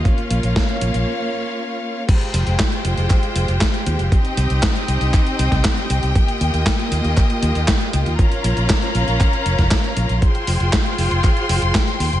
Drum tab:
CC |----------------|x---------------|----------------|----------------|
HH |xxxxxxxx--------|xxxxxxxxxxxxxxxx|xxxxxxxxxxxxxxxx|xxxxxxxxxxxxxxxx|
CP |----------------|----x---x---x---|----x---x---x---|----x---x---x---|
SD |----o-----------|----o-------o---|----o------oo---|----o-------o---|
BD |o---o-----------|o---o---o---o---|o---o---o--oo---|o---o---o---o---|

CC |----------------|----------------|
HH |xxxxxxxxxxxxxxxx|xxoxxxoxxxoxxxox|
CP |----x---x---x---|----x---x---x---|
SD |----o------oo---|----o-------o---|
BD |o---o---o--oo---|o---o---o---o---|